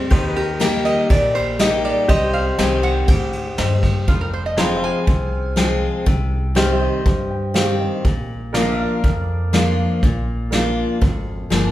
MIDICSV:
0, 0, Header, 1, 7, 480
1, 0, Start_track
1, 0, Key_signature, -3, "minor"
1, 0, Tempo, 495868
1, 109, Time_signature, 4, 2, 24, 8
1, 11339, End_track
2, 0, Start_track
2, 0, Title_t, "Resonator guitar played with a steel bar"
2, 0, Program_c, 0, 25
2, 353, Note_on_c, 0, 67, 90
2, 584, Note_off_c, 0, 67, 0
2, 587, Note_on_c, 0, 70, 88
2, 821, Note_off_c, 0, 70, 0
2, 823, Note_on_c, 0, 75, 112
2, 1059, Note_off_c, 0, 75, 0
2, 1070, Note_on_c, 0, 74, 90
2, 1303, Note_off_c, 0, 74, 0
2, 1305, Note_on_c, 0, 72, 103
2, 1540, Note_off_c, 0, 72, 0
2, 1551, Note_on_c, 0, 75, 96
2, 1783, Note_off_c, 0, 75, 0
2, 1788, Note_on_c, 0, 74, 88
2, 2020, Note_off_c, 0, 74, 0
2, 2024, Note_on_c, 0, 75, 96
2, 2255, Note_off_c, 0, 75, 0
2, 2259, Note_on_c, 0, 77, 97
2, 2497, Note_off_c, 0, 77, 0
2, 2504, Note_on_c, 0, 80, 114
2, 2737, Note_off_c, 0, 80, 0
2, 2741, Note_on_c, 0, 78, 118
2, 2977, Note_off_c, 0, 78, 0
2, 2981, Note_on_c, 0, 79, 88
2, 3431, Note_off_c, 0, 79, 0
2, 3951, Note_on_c, 0, 65, 78
2, 4067, Note_off_c, 0, 65, 0
2, 4075, Note_on_c, 0, 70, 83
2, 4189, Note_off_c, 0, 70, 0
2, 4195, Note_on_c, 0, 72, 81
2, 4309, Note_off_c, 0, 72, 0
2, 4316, Note_on_c, 0, 75, 76
2, 4429, Note_off_c, 0, 75, 0
2, 4438, Note_on_c, 0, 82, 79
2, 4667, Note_off_c, 0, 82, 0
2, 4683, Note_on_c, 0, 80, 105
2, 5608, Note_off_c, 0, 80, 0
2, 11339, End_track
3, 0, Start_track
3, 0, Title_t, "Grand piano"
3, 0, Program_c, 1, 0
3, 577, Note_on_c, 1, 67, 76
3, 585, Note_on_c, 1, 70, 71
3, 588, Note_on_c, 1, 75, 83
3, 1007, Note_off_c, 1, 67, 0
3, 1012, Note_off_c, 1, 70, 0
3, 1013, Note_off_c, 1, 75, 0
3, 1537, Note_on_c, 1, 67, 73
3, 1543, Note_on_c, 1, 70, 65
3, 1549, Note_on_c, 1, 75, 84
3, 1968, Note_off_c, 1, 67, 0
3, 1971, Note_off_c, 1, 70, 0
3, 1974, Note_off_c, 1, 75, 0
3, 2493, Note_on_c, 1, 67, 82
3, 2499, Note_on_c, 1, 72, 77
3, 2507, Note_on_c, 1, 75, 92
3, 2926, Note_off_c, 1, 67, 0
3, 2929, Note_off_c, 1, 72, 0
3, 2933, Note_off_c, 1, 75, 0
3, 3460, Note_on_c, 1, 67, 75
3, 3466, Note_on_c, 1, 72, 73
3, 3471, Note_on_c, 1, 75, 82
3, 3889, Note_off_c, 1, 67, 0
3, 3892, Note_off_c, 1, 72, 0
3, 3895, Note_off_c, 1, 75, 0
3, 4423, Note_on_c, 1, 68, 85
3, 4431, Note_on_c, 1, 72, 79
3, 4436, Note_on_c, 1, 77, 99
3, 4851, Note_off_c, 1, 68, 0
3, 4855, Note_off_c, 1, 72, 0
3, 4857, Note_off_c, 1, 77, 0
3, 5384, Note_on_c, 1, 68, 83
3, 5392, Note_on_c, 1, 72, 74
3, 5397, Note_on_c, 1, 79, 94
3, 5812, Note_off_c, 1, 68, 0
3, 5816, Note_off_c, 1, 72, 0
3, 5819, Note_off_c, 1, 79, 0
3, 6345, Note_on_c, 1, 67, 88
3, 6350, Note_on_c, 1, 72, 83
3, 6357, Note_on_c, 1, 75, 101
3, 6772, Note_off_c, 1, 67, 0
3, 6775, Note_off_c, 1, 72, 0
3, 6779, Note_off_c, 1, 75, 0
3, 7072, Note_on_c, 1, 79, 74
3, 7295, Note_off_c, 1, 79, 0
3, 7297, Note_on_c, 1, 67, 86
3, 7305, Note_on_c, 1, 72, 77
3, 7305, Note_on_c, 1, 77, 99
3, 7547, Note_on_c, 1, 75, 62
3, 7729, Note_off_c, 1, 67, 0
3, 7733, Note_off_c, 1, 72, 0
3, 7736, Note_off_c, 1, 77, 0
3, 7772, Note_off_c, 1, 75, 0
3, 8254, Note_on_c, 1, 70, 89
3, 8259, Note_on_c, 1, 74, 82
3, 8266, Note_on_c, 1, 77, 102
3, 8687, Note_off_c, 1, 70, 0
3, 8689, Note_off_c, 1, 74, 0
3, 8693, Note_off_c, 1, 77, 0
3, 9221, Note_on_c, 1, 70, 86
3, 9229, Note_on_c, 1, 74, 76
3, 9234, Note_on_c, 1, 77, 100
3, 9650, Note_off_c, 1, 70, 0
3, 9654, Note_off_c, 1, 74, 0
3, 9656, Note_off_c, 1, 77, 0
3, 10171, Note_on_c, 1, 70, 89
3, 10180, Note_on_c, 1, 74, 81
3, 10185, Note_on_c, 1, 77, 100
3, 10604, Note_off_c, 1, 70, 0
3, 10609, Note_off_c, 1, 74, 0
3, 10611, Note_off_c, 1, 77, 0
3, 11135, Note_on_c, 1, 70, 83
3, 11143, Note_on_c, 1, 74, 78
3, 11149, Note_on_c, 1, 80, 91
3, 11339, Note_off_c, 1, 70, 0
3, 11339, Note_off_c, 1, 74, 0
3, 11339, Note_off_c, 1, 80, 0
3, 11339, End_track
4, 0, Start_track
4, 0, Title_t, "Pedal steel guitar"
4, 0, Program_c, 2, 26
4, 106, Note_on_c, 2, 67, 73
4, 116, Note_on_c, 2, 72, 72
4, 122, Note_on_c, 2, 75, 76
4, 358, Note_off_c, 2, 72, 0
4, 358, Note_on_c, 2, 70, 72
4, 2008, Note_off_c, 2, 67, 0
4, 2013, Note_off_c, 2, 70, 0
4, 2016, Note_off_c, 2, 75, 0
4, 2019, Note_on_c, 2, 67, 78
4, 2035, Note_on_c, 2, 72, 76
4, 2041, Note_on_c, 2, 75, 72
4, 3925, Note_off_c, 2, 67, 0
4, 3933, Note_off_c, 2, 72, 0
4, 3936, Note_off_c, 2, 75, 0
4, 4433, Note_on_c, 2, 68, 72
4, 4444, Note_on_c, 2, 72, 69
4, 4450, Note_on_c, 2, 75, 66
4, 4692, Note_off_c, 2, 75, 0
4, 4692, Note_on_c, 2, 77, 66
4, 5858, Note_off_c, 2, 68, 0
4, 5863, Note_off_c, 2, 72, 0
4, 5866, Note_off_c, 2, 77, 0
4, 6354, Note_on_c, 2, 67, 70
4, 6368, Note_on_c, 2, 72, 67
4, 6376, Note_on_c, 2, 77, 68
4, 6618, Note_off_c, 2, 77, 0
4, 6618, Note_on_c, 2, 75, 68
4, 7778, Note_off_c, 2, 67, 0
4, 7786, Note_off_c, 2, 72, 0
4, 7788, Note_off_c, 2, 75, 0
4, 8268, Note_on_c, 2, 70, 72
4, 8275, Note_on_c, 2, 74, 72
4, 8288, Note_on_c, 2, 75, 70
4, 8530, Note_off_c, 2, 75, 0
4, 8530, Note_on_c, 2, 77, 70
4, 11339, Note_off_c, 2, 70, 0
4, 11339, Note_off_c, 2, 74, 0
4, 11339, Note_off_c, 2, 77, 0
4, 11339, End_track
5, 0, Start_track
5, 0, Title_t, "Steel-string acoustic guitar"
5, 0, Program_c, 3, 25
5, 102, Note_on_c, 3, 51, 87
5, 578, Note_on_c, 3, 55, 90
5, 583, Note_on_c, 3, 58, 97
5, 592, Note_on_c, 3, 63, 90
5, 595, Note_on_c, 3, 67, 100
5, 1017, Note_off_c, 3, 51, 0
5, 1040, Note_off_c, 3, 55, 0
5, 1042, Note_off_c, 3, 58, 0
5, 1046, Note_off_c, 3, 63, 0
5, 1048, Note_off_c, 3, 67, 0
5, 1065, Note_on_c, 3, 46, 89
5, 1543, Note_on_c, 3, 55, 92
5, 1547, Note_on_c, 3, 58, 96
5, 1554, Note_on_c, 3, 63, 98
5, 1562, Note_on_c, 3, 67, 100
5, 1979, Note_off_c, 3, 46, 0
5, 2002, Note_off_c, 3, 55, 0
5, 2004, Note_off_c, 3, 58, 0
5, 2008, Note_off_c, 3, 63, 0
5, 2012, Note_off_c, 3, 67, 0
5, 2023, Note_on_c, 3, 48, 94
5, 2503, Note_on_c, 3, 51, 95
5, 2510, Note_on_c, 3, 55, 93
5, 2518, Note_on_c, 3, 60, 100
5, 2521, Note_on_c, 3, 67, 100
5, 2938, Note_off_c, 3, 48, 0
5, 2962, Note_off_c, 3, 51, 0
5, 2965, Note_off_c, 3, 55, 0
5, 2969, Note_off_c, 3, 60, 0
5, 2971, Note_off_c, 3, 67, 0
5, 2985, Note_on_c, 3, 44, 92
5, 3443, Note_off_c, 3, 44, 0
5, 3470, Note_on_c, 3, 43, 93
5, 3926, Note_off_c, 3, 43, 0
5, 3948, Note_on_c, 3, 41, 88
5, 4430, Note_on_c, 3, 53, 90
5, 4440, Note_on_c, 3, 56, 82
5, 4444, Note_on_c, 3, 60, 89
5, 4449, Note_on_c, 3, 65, 95
5, 4861, Note_off_c, 3, 41, 0
5, 4886, Note_off_c, 3, 53, 0
5, 4891, Note_off_c, 3, 56, 0
5, 4893, Note_off_c, 3, 60, 0
5, 4896, Note_off_c, 3, 65, 0
5, 4911, Note_on_c, 3, 48, 84
5, 5382, Note_on_c, 3, 53, 85
5, 5394, Note_on_c, 3, 56, 96
5, 5400, Note_on_c, 3, 60, 90
5, 5406, Note_on_c, 3, 65, 86
5, 5823, Note_off_c, 3, 48, 0
5, 5842, Note_off_c, 3, 53, 0
5, 5848, Note_off_c, 3, 56, 0
5, 5851, Note_off_c, 3, 60, 0
5, 5854, Note_off_c, 3, 65, 0
5, 5869, Note_on_c, 3, 48, 96
5, 6342, Note_on_c, 3, 51, 92
5, 6352, Note_on_c, 3, 55, 86
5, 6360, Note_on_c, 3, 60, 102
5, 6362, Note_on_c, 3, 67, 91
5, 6782, Note_off_c, 3, 48, 0
5, 6803, Note_off_c, 3, 51, 0
5, 6807, Note_off_c, 3, 55, 0
5, 6811, Note_off_c, 3, 60, 0
5, 6812, Note_off_c, 3, 67, 0
5, 6833, Note_on_c, 3, 43, 89
5, 7301, Note_on_c, 3, 51, 91
5, 7312, Note_on_c, 3, 55, 82
5, 7318, Note_on_c, 3, 60, 89
5, 7325, Note_on_c, 3, 67, 105
5, 7744, Note_off_c, 3, 43, 0
5, 7762, Note_off_c, 3, 51, 0
5, 7767, Note_off_c, 3, 55, 0
5, 7770, Note_off_c, 3, 60, 0
5, 7774, Note_off_c, 3, 67, 0
5, 7791, Note_on_c, 3, 46, 87
5, 8271, Note_on_c, 3, 53, 89
5, 8280, Note_on_c, 3, 58, 88
5, 8287, Note_on_c, 3, 62, 98
5, 8293, Note_on_c, 3, 65, 100
5, 8703, Note_off_c, 3, 46, 0
5, 8726, Note_off_c, 3, 53, 0
5, 8731, Note_off_c, 3, 58, 0
5, 8735, Note_off_c, 3, 62, 0
5, 8737, Note_off_c, 3, 65, 0
5, 8752, Note_on_c, 3, 41, 83
5, 9225, Note_on_c, 3, 53, 93
5, 9236, Note_on_c, 3, 58, 87
5, 9240, Note_on_c, 3, 62, 100
5, 9251, Note_on_c, 3, 65, 98
5, 9662, Note_off_c, 3, 41, 0
5, 9683, Note_off_c, 3, 53, 0
5, 9689, Note_off_c, 3, 58, 0
5, 9690, Note_off_c, 3, 62, 0
5, 9696, Note_off_c, 3, 65, 0
5, 9716, Note_on_c, 3, 46, 88
5, 10184, Note_on_c, 3, 53, 85
5, 10194, Note_on_c, 3, 58, 92
5, 10201, Note_on_c, 3, 62, 93
5, 10205, Note_on_c, 3, 65, 93
5, 10623, Note_off_c, 3, 46, 0
5, 10642, Note_off_c, 3, 53, 0
5, 10647, Note_off_c, 3, 58, 0
5, 10650, Note_off_c, 3, 62, 0
5, 10652, Note_off_c, 3, 65, 0
5, 10662, Note_on_c, 3, 41, 91
5, 11135, Note_on_c, 3, 53, 84
5, 11147, Note_on_c, 3, 58, 87
5, 11152, Note_on_c, 3, 62, 94
5, 11154, Note_on_c, 3, 65, 95
5, 11339, Note_off_c, 3, 41, 0
5, 11339, Note_off_c, 3, 53, 0
5, 11339, Note_off_c, 3, 58, 0
5, 11339, Note_off_c, 3, 62, 0
5, 11339, Note_off_c, 3, 65, 0
5, 11339, End_track
6, 0, Start_track
6, 0, Title_t, "Upright bass"
6, 0, Program_c, 4, 32
6, 109, Note_on_c, 4, 39, 96
6, 879, Note_off_c, 4, 39, 0
6, 1069, Note_on_c, 4, 34, 84
6, 1839, Note_off_c, 4, 34, 0
6, 2023, Note_on_c, 4, 36, 92
6, 2411, Note_off_c, 4, 36, 0
6, 2504, Note_on_c, 4, 36, 98
6, 2914, Note_off_c, 4, 36, 0
6, 2983, Note_on_c, 4, 38, 84
6, 3394, Note_off_c, 4, 38, 0
6, 3470, Note_on_c, 4, 39, 92
6, 3878, Note_off_c, 4, 39, 0
6, 3950, Note_on_c, 4, 29, 82
6, 4720, Note_off_c, 4, 29, 0
6, 4913, Note_on_c, 4, 36, 84
6, 5682, Note_off_c, 4, 36, 0
6, 5872, Note_on_c, 4, 36, 94
6, 6642, Note_off_c, 4, 36, 0
6, 6832, Note_on_c, 4, 43, 84
6, 7602, Note_off_c, 4, 43, 0
6, 7792, Note_on_c, 4, 34, 90
6, 8561, Note_off_c, 4, 34, 0
6, 8751, Note_on_c, 4, 41, 83
6, 9521, Note_off_c, 4, 41, 0
6, 9707, Note_on_c, 4, 34, 90
6, 10477, Note_off_c, 4, 34, 0
6, 10664, Note_on_c, 4, 32, 81
6, 11073, Note_off_c, 4, 32, 0
6, 11142, Note_on_c, 4, 31, 89
6, 11339, Note_off_c, 4, 31, 0
6, 11339, End_track
7, 0, Start_track
7, 0, Title_t, "Drums"
7, 110, Note_on_c, 9, 36, 106
7, 110, Note_on_c, 9, 51, 90
7, 207, Note_off_c, 9, 36, 0
7, 207, Note_off_c, 9, 51, 0
7, 348, Note_on_c, 9, 51, 68
7, 445, Note_off_c, 9, 51, 0
7, 586, Note_on_c, 9, 38, 111
7, 586, Note_on_c, 9, 51, 89
7, 683, Note_off_c, 9, 38, 0
7, 683, Note_off_c, 9, 51, 0
7, 827, Note_on_c, 9, 51, 64
7, 924, Note_off_c, 9, 51, 0
7, 1066, Note_on_c, 9, 51, 89
7, 1067, Note_on_c, 9, 36, 116
7, 1162, Note_off_c, 9, 51, 0
7, 1164, Note_off_c, 9, 36, 0
7, 1307, Note_on_c, 9, 51, 71
7, 1404, Note_off_c, 9, 51, 0
7, 1543, Note_on_c, 9, 38, 113
7, 1543, Note_on_c, 9, 51, 85
7, 1640, Note_off_c, 9, 38, 0
7, 1640, Note_off_c, 9, 51, 0
7, 1785, Note_on_c, 9, 51, 69
7, 1881, Note_off_c, 9, 51, 0
7, 2021, Note_on_c, 9, 51, 85
7, 2024, Note_on_c, 9, 36, 108
7, 2118, Note_off_c, 9, 51, 0
7, 2121, Note_off_c, 9, 36, 0
7, 2263, Note_on_c, 9, 51, 62
7, 2360, Note_off_c, 9, 51, 0
7, 2502, Note_on_c, 9, 38, 105
7, 2502, Note_on_c, 9, 51, 81
7, 2599, Note_off_c, 9, 38, 0
7, 2599, Note_off_c, 9, 51, 0
7, 2741, Note_on_c, 9, 51, 57
7, 2838, Note_off_c, 9, 51, 0
7, 2978, Note_on_c, 9, 51, 85
7, 2983, Note_on_c, 9, 36, 113
7, 3075, Note_off_c, 9, 51, 0
7, 3080, Note_off_c, 9, 36, 0
7, 3222, Note_on_c, 9, 51, 72
7, 3319, Note_off_c, 9, 51, 0
7, 3464, Note_on_c, 9, 38, 116
7, 3464, Note_on_c, 9, 51, 84
7, 3560, Note_off_c, 9, 38, 0
7, 3560, Note_off_c, 9, 51, 0
7, 3705, Note_on_c, 9, 51, 74
7, 3707, Note_on_c, 9, 36, 86
7, 3802, Note_off_c, 9, 51, 0
7, 3804, Note_off_c, 9, 36, 0
7, 3946, Note_on_c, 9, 46, 49
7, 3948, Note_on_c, 9, 36, 103
7, 4043, Note_off_c, 9, 46, 0
7, 4045, Note_off_c, 9, 36, 0
7, 4427, Note_on_c, 9, 38, 110
7, 4427, Note_on_c, 9, 46, 52
7, 4524, Note_off_c, 9, 38, 0
7, 4524, Note_off_c, 9, 46, 0
7, 4910, Note_on_c, 9, 46, 50
7, 4911, Note_on_c, 9, 36, 112
7, 5007, Note_off_c, 9, 46, 0
7, 5008, Note_off_c, 9, 36, 0
7, 5388, Note_on_c, 9, 38, 102
7, 5485, Note_off_c, 9, 38, 0
7, 5867, Note_on_c, 9, 46, 44
7, 5871, Note_on_c, 9, 36, 99
7, 5964, Note_off_c, 9, 46, 0
7, 5968, Note_off_c, 9, 36, 0
7, 6352, Note_on_c, 9, 38, 110
7, 6448, Note_off_c, 9, 38, 0
7, 6831, Note_on_c, 9, 46, 54
7, 6832, Note_on_c, 9, 36, 111
7, 6928, Note_off_c, 9, 36, 0
7, 6928, Note_off_c, 9, 46, 0
7, 7310, Note_on_c, 9, 38, 112
7, 7407, Note_off_c, 9, 38, 0
7, 7789, Note_on_c, 9, 46, 51
7, 7790, Note_on_c, 9, 36, 103
7, 7886, Note_off_c, 9, 46, 0
7, 7887, Note_off_c, 9, 36, 0
7, 8271, Note_on_c, 9, 38, 104
7, 8271, Note_on_c, 9, 46, 51
7, 8368, Note_off_c, 9, 38, 0
7, 8368, Note_off_c, 9, 46, 0
7, 8749, Note_on_c, 9, 36, 106
7, 8750, Note_on_c, 9, 46, 51
7, 8846, Note_off_c, 9, 36, 0
7, 8846, Note_off_c, 9, 46, 0
7, 9230, Note_on_c, 9, 38, 109
7, 9327, Note_off_c, 9, 38, 0
7, 9708, Note_on_c, 9, 36, 104
7, 9709, Note_on_c, 9, 46, 44
7, 9805, Note_off_c, 9, 36, 0
7, 9806, Note_off_c, 9, 46, 0
7, 10187, Note_on_c, 9, 38, 116
7, 10187, Note_on_c, 9, 46, 49
7, 10283, Note_off_c, 9, 38, 0
7, 10283, Note_off_c, 9, 46, 0
7, 10663, Note_on_c, 9, 46, 50
7, 10665, Note_on_c, 9, 36, 109
7, 10760, Note_off_c, 9, 46, 0
7, 10762, Note_off_c, 9, 36, 0
7, 11147, Note_on_c, 9, 38, 106
7, 11244, Note_off_c, 9, 38, 0
7, 11339, End_track
0, 0, End_of_file